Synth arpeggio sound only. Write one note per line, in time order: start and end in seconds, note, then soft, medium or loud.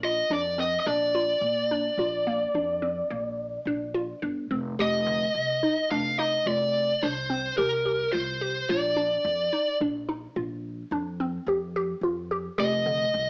0.03 0.21 F4 medium
0.31 0.49 D4 medium
0.58 0.77 C4 medium
0.87 1.05 D4 medium
1.15 1.51 F4 medium
1.71 1.89 D4 medium
1.99 2.17 F4 medium
2.27 2.45 A#3 medium
2.55 2.73 D4 medium
2.82 3.00 C4 medium
3.10 3.47 A#3 medium
3.67 3.85 D4 medium
3.94 4.13 F4 medium
4.22 4.40 D4 medium
4.51 4.69 C4 medium
4.79 4.97 G4 medium
5.07 5.42 D3 medium
5.63 5.81 D#4 medium
5.91 6.09 D4 medium
6.19 6.37 D#4 medium
6.47 6.83 F4 medium
7.03 7.20 D4 medium
7.30 7.48 C4 medium
7.58 7.76 G4 medium
7.86 8.03 G4 medium
8.13 8.31 F4 medium
8.41 8.59 G4 medium
8.69 8.87 F4 medium
8.96 9.32 D4 medium
9.53 9.71 D#4 medium
9.81 9.99 D4 medium
10.08 10.26 D#4 medium
10.36 10.72 F4 medium
10.92 11.10 D4 medium
11.20 11.38 C4 medium
11.48 11.66 G4 medium
11.76 11.94 G4 medium
12.03 12.21 F4 medium
12.31 12.49 G4 medium
12.58 12.76 G4 medium
12.86 13.22 D3 medium